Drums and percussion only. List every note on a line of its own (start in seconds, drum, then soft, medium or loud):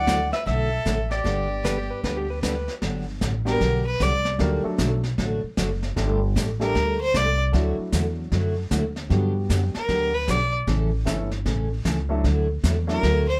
0.07 kick soft
0.07 snare medium
0.07 hi-hat pedal medium
0.33 snare soft
0.47 brush sweep medium
0.47 kick soft
0.47 snare soft
0.86 kick soft
0.86 snare medium
0.86 hi-hat pedal medium
1.11 snare soft
1.25 brush sweep soft
1.25 kick soft
1.25 snare soft
1.64 kick soft
1.64 snare medium
1.64 hi-hat pedal medium
2.04 brush sweep medium
2.04 kick soft
2.04 snare soft
2.43 kick soft
2.43 snare medium
2.43 hi-hat pedal medium
2.68 snare soft
2.82 brush sweep medium
2.82 kick soft
2.82 snare soft
3.21 kick soft
3.21 snare medium
3.21 hi-hat pedal medium
3.47 snare soft
3.61 brush sweep medium
3.61 kick soft
3.61 snare soft
4.00 kick soft
4.00 snare medium
4.00 hi-hat pedal medium
4.25 snare soft
4.39 brush sweep soft
4.39 kick soft
4.39 snare soft
4.78 kick soft
4.78 snare medium
4.78 hi-hat pedal medium
5.03 snare soft
5.18 brush sweep medium
5.18 kick soft
5.18 snare soft
5.57 kick soft
5.57 snare medium
5.57 hi-hat pedal medium
5.83 snare soft
5.97 brush sweep soft
5.97 kick soft
5.97 snare soft
6.36 kick soft
6.36 snare medium
6.36 hi-hat pedal medium
6.61 snare soft
6.75 brush sweep soft
6.75 kick soft
6.75 snare soft
7.14 kick soft
7.14 snare medium
7.14 hi-hat pedal medium
7.53 brush sweep medium
7.53 kick soft
7.53 snare soft
7.92 kick soft
7.92 snare medium
7.92 hi-hat pedal medium
8.32 brush sweep medium
8.32 kick soft
8.32 snare soft
8.71 kick soft
8.71 snare medium
8.71 hi-hat pedal medium
8.96 snare soft
9.10 brush sweep soft
9.10 kick soft
9.10 snare soft
9.50 kick soft
9.50 snare medium
9.50 hi-hat pedal medium
9.75 snare soft
9.89 brush sweep soft
9.89 kick soft
9.89 snare soft
10.28 kick soft
10.28 snare medium
10.28 hi-hat pedal medium
10.67 brush sweep soft
10.67 kick soft
10.67 snare soft
11.07 kick soft
11.07 snare medium
11.07 hi-hat pedal medium
11.31 snare soft
11.46 brush sweep medium
11.46 kick soft
11.46 snare soft
11.85 kick soft
11.85 snare medium
11.85 hi-hat pedal medium
12.24 brush sweep soft
12.24 kick soft
12.24 snare soft
12.64 kick soft
12.64 snare medium
12.64 hi-hat pedal medium
12.89 snare soft
13.03 brush sweep medium
13.03 kick soft
13.03 snare soft